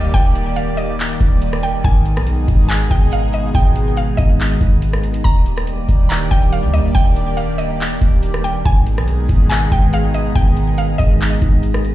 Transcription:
Already playing: analog synth pad D#3 G3 A#3 G4 D5, synth texture D#4 G4 D5, synth pluck D#5, downlifter
0.00 808-style bass D#1
0.14 808-style bass D#1, synth pluck G5, kick, closed hi-hat
0.35 closed hi-hat
0.56 synth pluck F5, closed hi-hat
0.77 synth pluck D#5, closed hi-hat
0.99 clap, closed hi-hat
1.20 808-style bass D#1, kick, closed hi-hat
1.42 closed hi-hat
1.53 cross-stick
1.63 synth pluck G5, closed hi-hat
1.84 808-style bass G#1, analog synth pad B2 G#3 D#4 G#4, synth texture B3 G#4, synth pluck G#5, kick, closed hi-hat
2.06 closed hi-hat
2.16 808-style bass B1, cross-stick
2.27 closed hi-hat
2.48 808-style bass G#1, kick, closed hi-hat
2.69 synth pluck G#5, clap, closed hi-hat
2.91 808-style bass G#1, synth pluck G5, kick, closed hi-hat
3.12 synth pluck F5, closed hi-hat
3.33 synth pluck D#5, closed hi-hat
3.54 808-style bass G#1, synth pluck G5, kick, closed hi-hat
3.76 closed hi-hat
3.97 synth pluck F5, closed hi-hat
4.17 808-style bass G#1, synth pluck D#5, kick, closed hi-hat
4.40 clap, closed hi-hat
4.61 808-style bass G#1, kick, closed hi-hat
4.82 closed hi-hat
4.93 cross-stick
5.03 closed hi-hat
5.14 closed hi-hat
5.24 808-style bass D#1, analog synth pad D#3 G3 A#3 G4 D5, synth texture D4 G4, synth pluck A#5, kick, closed hi-hat
5.46 closed hi-hat
5.58 cross-stick
5.67 closed hi-hat
5.89 808-style bass D#1, kick, closed hi-hat
6.09 synth pluck A#5, clap, closed hi-hat
6.31 808-style bass D#1, synth pluck G5, kick, closed hi-hat
6.52 synth pluck F5, closed hi-hat
6.63 808-style bass D#2
6.74 synth pluck D#5, closed hi-hat
6.79 808-style bass D#1
6.95 808-style bass D#1, synth pluck G5, kick, closed hi-hat
7.16 closed hi-hat
7.37 synth pluck F5, closed hi-hat
7.58 synth pluck D#5, closed hi-hat
7.80 clap, closed hi-hat
8.01 808-style bass D#1, kick, closed hi-hat
8.23 closed hi-hat
8.34 cross-stick
8.44 synth pluck G5, closed hi-hat
8.65 808-style bass G#1, analog synth pad B2 D#3 G#3 D#4 G#4, synth texture B3 G#4 D#5, synth pluck G#5, kick, closed hi-hat
8.87 closed hi-hat
8.97 808-style bass B1, cross-stick
9.08 closed hi-hat
9.29 808-style bass G#1, kick, closed hi-hat
9.50 synth pluck G#5, clap, closed hi-hat
9.72 808-style bass G#1, synth pluck G5, kick, closed hi-hat
9.93 synth pluck F5, closed hi-hat
10.14 synth pluck D#5, closed hi-hat
10.35 808-style bass G#1, synth pluck G5, kick, closed hi-hat
10.57 closed hi-hat
10.78 synth pluck F5, closed hi-hat
10.98 808-style bass G#1, synth pluck D#5, kick, closed hi-hat
11.21 clap, closed hi-hat
11.42 808-style bass G#1, kick, closed hi-hat
11.63 closed hi-hat
11.74 cross-stick
11.84 closed hi-hat

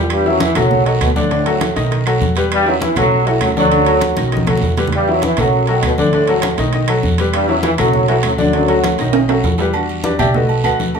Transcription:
Already playing: upright bass E2
0.10 trombone section G2 G3, high conga, high timbale, long guiro, claves
0.26 trombone section F#2 F#3, grand piano E3 E4 E5, high conga
0.40 grand piano E3 E4 E5, trombone section E3 E4, high conga, high timbale, short guiro
0.55 upright bass B1, trombone section F#2 F#3, grand piano F#3 F#4 A4, low conga, high timbale, short guiro, claves
0.71 high conga, low conga, long guiro
0.86 trombone section D#3 D#4, grand piano F#3 F#4 A4, high conga, high timbale
1.01 upright bass D2, trombone section B2 B3, high conga, high timbale, short guiro, claves
1.16 trombone section A2 A3, grand piano D3 D4 D5, high conga, short guiro
1.31 grand piano D3 D4 D5, high conga, high timbale, long guiro
1.45 grand piano F#3 F#4 A4, high conga, high timbale
1.61 high conga, high timbale, short guiro, claves
1.76 upright bass B1, grand piano D#3 D#4 D#5, high conga, high timbale, short guiro
1.91 grand piano D#3 D#4 D#5, high conga, high timbale, long guiro
2.06 grand piano F#3 F#4 A4, high conga, high timbale, claves
2.21 upright bass E2, high conga, short guiro
2.35 grand piano G3 G4 B4, high conga, high timbale, short guiro
2.50 trombone section G2 G3, high conga, high timbale, long guiro, claves
2.66 trombone section F#2 F#3, grand piano E3 E4 E5, high conga
2.80 grand piano E3 E4 E5, trombone section E3 E4, high conga, high timbale, short guiro
2.96 upright bass B1, trombone section F#2 F#3, grand piano F#3 F#4 A4, low conga, high timbale, short guiro, claves
3.11 high conga, long guiro
3.26 trombone section E3 E4, grand piano F#3 F#4 A4, high conga, high timbale
3.41 upright bass D2, trombone section F#2 F#3, high conga, high timbale, short guiro, claves
3.56 trombone section F#2 F#3, grand piano D3 D4 D5, high conga, short guiro
3.71 grand piano D3 D4 D5, high conga, high timbale, long guiro
3.86 grand piano F#3 F#4 A4, high conga, high timbale
4.01 high conga, high timbale, short guiro, claves
4.17 upright bass B1, grand piano D#3 D#4 D#5, high conga, high timbale, short guiro
4.32 grand piano D#3 D#4 D#5, high timbale, long guiro
4.37 high conga
4.47 grand piano F#3 F#4 A4, low conga, high timbale, claves
4.57 low conga
4.62 upright bass E2, low timbale, short guiro
4.77 grand piano G3 G4 B4, low conga, high timbale, short guiro
4.87 low conga
4.92 trombone section G2 G3, high conga, high timbale, long guiro, claves
5.08 trombone section F#2 F#3, grand piano E3 E4 E5, high conga
5.22 grand piano E3 E4 E5, trombone section E3 E4, high conga, high timbale, short guiro
5.37 upright bass B1, trombone section F#2 F#3, grand piano F#3 F#4 A4, low conga, high timbale, short guiro, claves
5.53 high conga, long guiro
5.67 trombone section D#3 D#4, grand piano F#3 F#4 A4, high conga, high timbale
5.83 upright bass D2, trombone section B2 B3, high conga, high timbale, short guiro, claves
5.98 trombone section A2 A3, grand piano D3 D4 D5, high conga, short guiro
6.13 grand piano D3 D4 D5, high conga, high timbale, long guiro
6.28 grand piano F#3 F#4 A4, high conga, high timbale
6.42 high conga, high timbale, short guiro, claves
6.57 upright bass B1, grand piano D#3 D#4 D#5, high conga, high timbale, short guiro
6.73 grand piano D#3 D#4 D#5, high conga, high timbale, long guiro
6.88 grand piano F#3 F#4 A4, high conga, high timbale, claves
7.03 upright bass E2, high conga, short guiro
7.18 grand piano G3 G4 B4, high conga, high timbale, short guiro
7.33 trombone section G2 G3, high conga, high timbale, long guiro, claves
7.48 trombone section F#2 F#3, grand piano E3 E4 E5, high conga
7.63 grand piano E3 E4 E5, trombone section E3 E4, high conga, high timbale, short guiro
7.78 upright bass B1, trombone section F#2 F#3, grand piano F#3 F#4 A4, low conga, high timbale, short guiro, claves
7.93 high conga, low conga, long guiro
8.08 trombone section E3 E4, grand piano F#3 F#4 A4, high conga, high timbale
8.23 upright bass D2, trombone section F#2 F#3, high conga, high timbale, short guiro, claves
8.38 trombone section F#2 F#3, grand piano D3 D4 D5, high conga, short guiro
8.53 grand piano D3 D4 D5, high conga, high timbale, long guiro
8.68 grand piano F#3 F#4 A4, high conga, high timbale
8.83 high conga, high timbale, short guiro, claves
8.98 upright bass B1, grand piano D#3 D#4 D#5, high conga, high timbale, short guiro
9.13 grand piano D#3 D#4 D#5, high conga, high timbale, long guiro
9.29 grand piano F#3 F#4 A4, high conga, high timbale, claves
9.43 upright bass E2, high conga, low timbale, short guiro
9.58 grand piano G3 G4 B4, high conga, low timbale, short guiro
9.73 grand piano G3 D4 F#4, high conga, low agogo, long guiro, claves
9.89 high conga, low agogo
10.04 grand piano D4 G4 B4 D5, high conga, low agogo, short guiro
10.19 upright bass B1, grand piano G4 D5 E5 G5, low conga, low agogo, short guiro, claves
10.34 grand piano A3 D#4 F#4 A4 B4 D#5, high conga, low conga, long guiro
10.49 high conga, low agogo
10.64 upright bass D2, grand piano F#4 B4 D#5 F#5, high conga, low agogo, short guiro, claves
10.79 high conga, short guiro
10.94 grand piano A3 D4 F#4, high conga, low agogo, long guiro

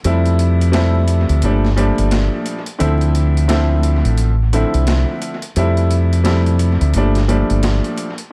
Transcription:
0.04 fingered electric bass F2, upright piano C3 F3 G3 A3 E4, closed hi-hat
0.26 closed hi-hat
0.39 closed hi-hat
0.61 closed hi-hat
0.72 upright piano C3 F3 G3 A3 E4, snare, closed hi-hat
1.08 closed hi-hat
1.29 fingered electric bass D2, closed hi-hat
1.42 fingered electric bass G1, upright piano A#2 F3 G3 A3 D4, closed hi-hat
1.64 snare
1.76 upright piano A#2 F3 G3 A3 D4, closed hi-hat
1.98 fingered electric bass G1, closed hi-hat
2.11 snare, closed hi-hat
2.46 closed hi-hat
2.66 closed hi-hat
2.79 fingered electric bass D2, upright piano D3 F3 A3 C4 E4, closed hi-hat
3.01 closed hi-hat
3.15 closed hi-hat
3.37 closed hi-hat
3.48 upright piano D3 F3 A3 C4 E4, snare, closed hi-hat
3.83 closed hi-hat
4.05 fingered electric bass A1, closed hi-hat
4.18 closed hi-hat
4.53 upright piano D3 F3 A3 C4 E4, closed hi-hat
4.74 fingered electric bass C2, closed hi-hat
4.87 snare, closed hi-hat
5.22 closed hi-hat
5.42 closed hi-hat
5.56 fingered electric bass F2, upright piano C3 F3 G3 A3 E4, closed hi-hat
5.77 closed hi-hat
5.91 closed hi-hat
6.13 closed hi-hat
6.24 upright piano C3 F3 G3 A3 E4, snare, closed hi-hat
6.46 closed hi-hat
6.59 closed hi-hat
6.81 fingered electric bass D2, closed hi-hat
6.94 fingered electric bass G1, upright piano A#2 F3 G3 A3 D4, closed hi-hat
7.15 snare, closed hi-hat
7.28 upright piano A#2 F3 G3 A3 D4, closed hi-hat
7.50 fingered electric bass G1, closed hi-hat
7.63 snare, closed hi-hat
7.84 closed hi-hat
7.98 closed hi-hat
8.18 closed hi-hat

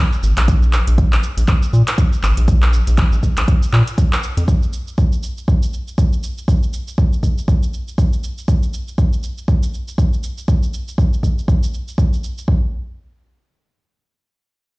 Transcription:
0.13 shaker
0.23 analog synth bass G#1, shaker
0.37 analog synth bass A#1, clap, closed hi-hat, shaker
0.48 kick, closed hi-hat, shaker
0.63 shaker
0.73 clap, shaker
0.87 analog synth bass A#1, closed hi-hat, shaker
0.98 kick, closed hi-hat, shaker
1.12 analog synth bass A#1, clap, shaker
1.23 shaker
1.37 analog synth bass A#1, closed hi-hat, shaker
1.48 kick, clap, closed hi-hat, shaker
1.63 shaker
1.73 analog synth bass A#2, shaker
1.88 clap, closed hi-hat, shaker
1.98 kick, closed hi-hat, shaker
2.13 shaker
2.23 analog synth bass G#1, clap, shaker
2.37 analog synth bass A#1, closed hi-hat, shaker
2.48 kick, closed hi-hat, shaker
2.62 clap, shaker
2.73 shaker
2.87 analog synth bass A#1, closed hi-hat, shaker
2.98 kick, clap, closed hi-hat, shaker
3.12 analog synth bass A#1, shaker
3.23 kick, shaker
3.37 analog synth bass A#1, clap, closed hi-hat, shaker
3.48 kick, closed hi-hat, shaker
3.63 shaker
3.73 analog synth bass A#2, clap, shaker
3.87 closed hi-hat, shaker
3.98 kick, closed hi-hat, shaker
4.13 clap, shaker
4.23 shaker
4.37 analog synth bass F2, closed hi-hat, shaker
4.48 kick, shaker
4.63 shaker
4.73 shaker
4.88 shaker
4.98 kick, shaker
5.12 shaker
5.23 shaker
5.38 shaker
5.48 kick, shaker
5.63 shaker
5.73 shaker
5.88 shaker
5.98 kick, shaker
6.13 shaker
6.23 shaker
6.38 shaker
6.48 kick, shaker
6.63 shaker
6.73 shaker
6.88 shaker
6.98 kick, shaker
7.13 shaker
7.23 kick, shaker
7.38 shaker
7.48 kick, shaker
7.63 shaker
7.73 shaker
7.88 shaker
7.98 kick, shaker
8.13 shaker
8.24 shaker
8.38 shaker
8.48 kick, shaker
8.63 shaker
8.74 shaker
8.88 shaker
8.98 kick, shaker
9.13 shaker
9.23 shaker
9.38 shaker
9.48 kick, shaker
9.63 shaker
9.74 shaker
9.88 shaker
9.98 kick, shaker
10.13 shaker
10.23 shaker
10.38 shaker
10.48 kick, shaker
10.63 shaker
10.74 shaker
10.88 shaker
10.98 kick, shaker
11.13 shaker
11.23 kick, shaker
11.38 shaker
11.48 kick, shaker
11.63 shaker
11.74 shaker
11.88 shaker
11.98 kick, shaker
12.13 shaker
12.24 shaker
12.38 shaker
12.48 kick

